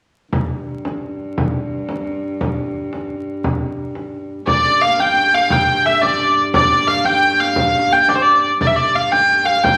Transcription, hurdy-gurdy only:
4.47 D5
4.82 F5
5.00 G5
5.34 F5
5.52 G5
5.86 E5
6.02 D5
6.55 D5
6.87 F5
7.05 G5
7.40 F5
7.57 F5
7.93 G5
8.09 D5
8.15 C5
8.22 D5
8.61 D5
8.67 E5
8.76 D5
8.95 F5
9.12 G5
9.46 F5
9.64 G5

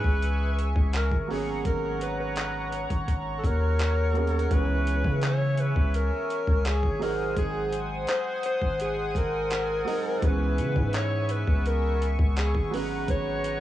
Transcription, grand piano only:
Already playing: E3 G#3 B3 C#4 G#4
1.28 F#3 A#3 B3 C#4
1.32 G#4
4.13 F#3 A#3 B3 C#4
4.17 G#4
4.49 E3 G#3 B3 C#4 G#4
6.99 F#3 G#3 C4 D#4 G#4
9.85 F#3 G#3 C4 D#4 G#4
10.20 E3 G#3 B3 C#4
10.24 G#4
12.71 F#3 G#3 B3 C#4 G#4

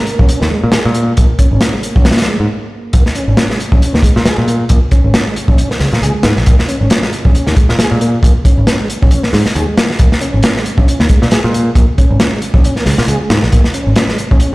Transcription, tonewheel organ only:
0.19 C#4
0.41 A#3
0.50 G#3
0.73 G#4
0.85 G#3
0.95 A#3
1.17 A#3
1.39 C#4
1.74 G#3
1.96 C#4
2.18 A#3
2.27 G#3
2.94 A#3
3.15 C#4
3.50 G#3
3.72 C#4
3.94 A#3
4.04 G#3
4.26 G#4
4.38 G#3
4.48 A#3
4.70 A#3
4.91 C#4
5.27 G#3
5.49 C#4
5.71 A#3
5.80 G#3
6.02 G#4
6.15 G#3
6.24 A#3
6.46 A#3
6.68 C#4
7.03 G#3
7.25 C#4
7.47 A#3
7.57 G#3
7.79 G#4
7.92 G#3
8.01 A#3
8.23 A#3
8.45 C#4
8.80 G#3
9.02 C#4
9.24 A#3
9.33 G#3
9.55 G#4
9.68 G#3
9.77 A#3
9.99 A#3
10.21 C#4
10.56 G#3
10.78 C#4
11.00 A#3
11.09 G#3
11.32 G#4
11.44 G#3
11.53 A#3
11.76 A#3
11.98 C#4
12.32 G#3
12.55 C#4
12.77 A#3
12.86 G#3
13.08 G#4
13.21 G#3
13.30 A#3
13.52 A#3
13.74 C#4
14.09 G#3
14.31 C#4

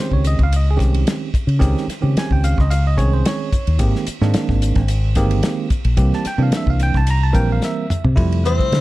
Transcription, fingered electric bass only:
0.12 C#2
0.39 C#2
0.79 C2
1.34 muted fingered electric bass stroke
1.47 C#3
1.61 C#2
1.88 muted fingered electric bass stroke
2.03 C#3
2.16 muted fingered electric bass stroke
2.31 C#2
2.58 C#2
2.98 C2
3.53 muted fingered electric bass stroke
3.67 D#2
3.80 G#1
4.07 muted fingered electric bass stroke
4.21 G#2
4.35 muted fingered electric bass stroke
4.49 G#1
4.76 G#1
5.16 G1
5.70 muted fingered electric bass stroke
5.85 A#1
5.98 C2
6.26 muted fingered electric bass stroke
6.38 C3
6.51 muted fingered electric bass stroke
6.66 C2
6.95 C2
7.35 A#1
7.90 muted fingered electric bass stroke
8.05 C3
8.17 F2
8.44 E2
8.72 D3

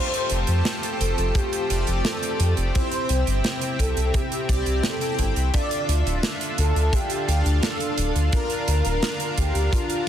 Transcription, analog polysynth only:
Already playing: A3 F4 G4 C5
1.70 A3 F4 G4 D5
2.75 C4 E4 G4 E5
4.49 C4 E4 G4 D5
5.01 C4 E4 G4 G5
5.54 D4 F4 A4 E5
7.28 D4 F4 A4 F5
8.33 D4 F4 A#4 F5

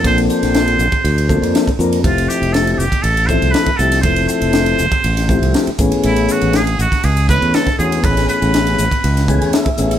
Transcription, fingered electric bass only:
0.05 A#1
0.43 A#1
0.79 A#1
0.92 muted fingered electric bass stroke
1.04 D2
1.42 F2
1.67 muted fingered electric bass stroke
1.79 F2
2.04 F1
2.42 F1
2.79 F1
2.92 muted fingered electric bass stroke
3.04 A1
3.42 C2
3.67 muted fingered electric bass stroke
3.79 C2
4.03 F1
4.42 F1
4.80 F1
4.92 muted fingered electric bass stroke
5.04 A1
5.42 C2
5.67 muted fingered electric bass stroke
5.79 A1
6.04 A1
6.42 A1
6.79 A1
7.04 C#2
7.42 E2
7.67 muted fingered electric bass stroke
7.79 E2
8.04 A1
8.42 A1
8.79 A1
9.04 C#2
9.43 E2
9.66 muted fingered electric bass stroke
9.79 A1

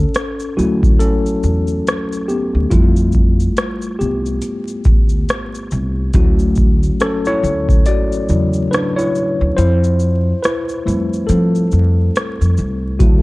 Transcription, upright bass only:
0.58 D2
1.44 E2
2.55 D2
2.72 F2
4.01 C2
4.86 D2
5.72 C2
6.15 D2
7.43 D2
8.30 E2
9.41 D2
9.58 F2
10.87 F2
11.29 F3
11.73 F2
12.41 F2
12.59 C2
13.00 D2

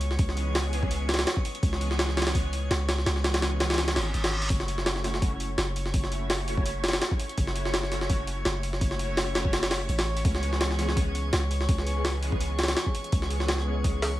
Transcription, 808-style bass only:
Already playing: C#2
0.19 C#2
1.63 C#2
2.70 C#2
3.06 C#2
3.96 G#1
4.14 G#1
4.50 F#1
5.58 F#1
5.94 F#1
7.38 F#1
8.46 F#1
8.81 F#1
9.89 A1
10.25 C#2
11.33 C#2
11.69 C#2
13.12 C#2

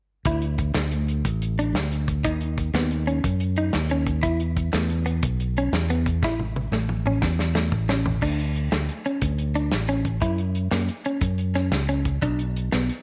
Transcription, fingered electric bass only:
0.25 D2
0.75 D2
1.25 A1
1.73 D2
2.24 D#2
2.74 D#2
3.24 F#2
3.75 D#2
4.23 E2
4.74 E2
5.23 B1
5.72 E2
6.22 A1
6.72 A1
7.22 E2
7.72 A1
8.22 D2
8.72 D2
9.22 D2
9.72 A1
10.21 F#2
10.72 F#2
11.21 F#2
11.71 C#2
12.22 B1
12.73 B1

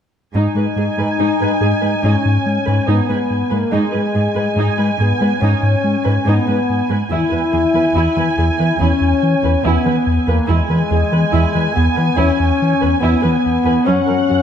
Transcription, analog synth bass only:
0.35 G#2
0.55 G#3
0.76 G#2
0.98 G#3
1.18 G#2
1.40 G#3
1.61 G#2
1.82 G#3
2.04 G#2
2.25 G#2
2.46 G#3
2.67 G#2
2.88 G#2
3.09 G#3
3.30 G#2
3.52 G#2
3.72 G#2
3.93 G#3
4.15 G#2
4.36 G#3
4.56 G#2
4.78 G#3
5.00 G#2
5.21 G#3
5.42 G#2
5.63 G#2
5.84 G#3
6.06 G#2
6.28 G#2
6.48 G#3
6.69 G#2
6.90 G#2
7.11 E2
7.32 E3
7.53 E2
7.74 E3
7.96 E2
8.17 E3
8.38 E2
8.60 E3
8.80 E2
9.01 E2
9.23 E3
9.44 E2
9.66 E2
9.86 E3
10.07 E2
10.28 E2
10.49 E2
10.70 E3
10.91 E2
11.12 E3
11.34 E2
11.55 E3
11.76 E2
11.98 E3
12.19 E2
12.40 E2
12.62 E3
12.83 E2
13.04 E2
13.25 E3
13.46 E2
13.67 E2
13.88 F#2
14.09 F#3
14.31 F#2

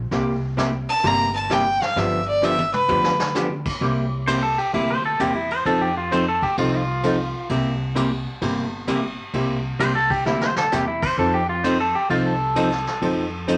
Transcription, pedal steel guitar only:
4.27 C5
4.43 A4
4.58 G4
4.74 E4
4.90 C5
5.05 A4
5.20 G4
5.35 E4
5.52 C5
5.66 A4
5.81 G4
5.97 F4
6.12 C5
6.28 A4
6.43 G4
6.59 F4
6.74 F4
9.80 C5
9.95 A4
10.11 G4
10.26 E4
10.42 C5
10.58 A4
10.73 G4
10.88 E4
11.03 C5
11.19 A4
11.34 G4
11.49 F4
11.64 C5
11.80 A4
11.95 G4
12.10 F4
12.26 A4

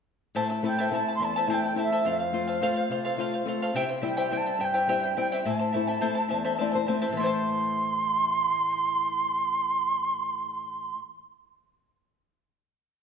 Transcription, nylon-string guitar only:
0.35 A2
0.63 A3 C4 E4
0.91 A3 C4 E4
1.19 E2
1.47 A3 C4 E4
1.75 A3 C4 E4
2.05 F2
2.32 A3 C4 F4
2.62 A3 C4 F4
2.89 C3
3.17 A3 C4 F4
3.45 A3 C4 F4
3.74 C3
4.02 G3 C4 E4
4.31 G3 C4 E4
4.59 G2
4.88 G3 C4 E4
5.17 G3 C4 E4
5.45 A2
5.75 A3 C4 E4
6.02 A3 C4 E4
6.32 E2
6.60 A3 C4 E4 D5
6.75 C5
6.88 A3 C4 E4 E5
7.08 A2
7.13 E3 A3
7.20 E4
7.24 C5 A5

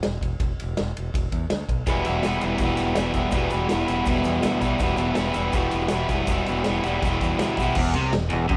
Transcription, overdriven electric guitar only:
1.87 E2 B2 E3 G3 B3 E4
2.06 E3 G3 B3 E4
2.23 E3 G3 B3
2.28 E4
2.43 E3 G3 B3 E4
2.61 E2 B2 E3 G3 B3 E4
2.96 E3 G3 B3 E4
3.14 E3 G3 B3 E4
3.32 E2 B2 E3 G3 B3
3.36 E4
3.52 E3 G3 B3 E4
3.70 E3 G3 B3 E4
3.87 E3 G3 B3 E4
4.07 E2 B2 E3 G3 B3 E4
4.43 E3 G3 B3 E4
4.61 G3 B3 E4
4.65 E3
4.81 E2 B2 E3 G3 B3
4.85 E4
4.98 E3 G3 B3 E4
5.14 E3 G3 B3 E4
5.34 E3 G3 B3 E4
5.53 E2 B2 E3 G3 B3 E4
5.91 E3 G3 B3 E4
6.10 E3 G3 B3 E4
6.28 E2 B2 E3 G3 B3 E4
6.47 E3 G3 B3 E4
6.65 E3 G3 B3
6.69 E4
6.84 E3 G3 B3 E4
7.03 E2 B2 E3 G3 B3
7.07 E4
7.39 E3 G3 B3 E4
7.58 E3 G3 B3 E4
7.76 E2
7.94 C3
8.13 E2
8.30 E2
8.48 F#2

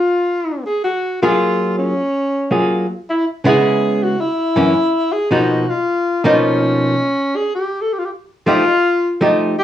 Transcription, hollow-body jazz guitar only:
1.23 F#3 A#3 F4 G#4
2.51 F#3 A#3 F4 G#4
3.44 C#3 G#3 B3 E4
4.56 F#2 E3 A#3 C#4
5.31 B2 F3 A#3 D#4
6.24 B2 F3 A#3 D#4
8.46 F3 A3 D#4 G4
9.21 F3 A3 D#4 G4

